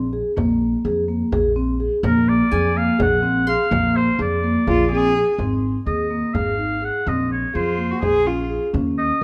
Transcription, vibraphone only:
0.13 G#4
0.37 A#3
0.85 G#4
1.08 A#3
1.32 G#4
1.56 C4
1.80 G#4
2.04 A#3
2.52 G#4
2.75 A#3
2.99 G#4
3.23 C4
3.47 G#4
3.71 A#3
4.19 G#4
4.43 A#3
4.67 G#4
4.91 C4
5.15 G#4
5.39 C4
5.87 G#4
6.11 A#3
6.35 G#4
6.58 D#4
6.82 G#4
7.06 C4
7.54 G#4
7.78 A#3
8.02 G#4
8.25 C#4
8.50 G#4
8.73 C#4

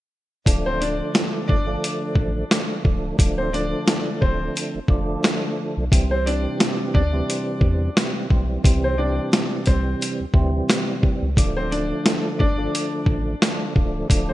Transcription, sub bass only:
0.46 D1
1.49 G1
2.16 A1
2.85 C#1
3.19 D1
4.22 D1
4.75 F1
4.88 F1
5.77 B1
5.92 C2
6.95 D2
7.61 E2
8.31 B1
8.65 C2
9.67 C2
10.20 D2
10.34 D2
11.22 C#2
11.37 D1
12.40 G1
13.07 A1
13.76 C#1
14.10 D1

